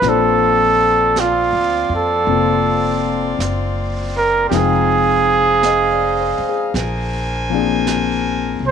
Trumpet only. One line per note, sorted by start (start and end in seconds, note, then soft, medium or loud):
0.00 0.10 B4 medium
0.09 1.22 A4 medium
1.20 1.93 F4 medium
1.96 3.39 A4 medium
4.18 4.46 A#4 medium
4.50 4.56 G4 medium
4.54 6.76 G#4 loud
8.67 8.71 C5 medium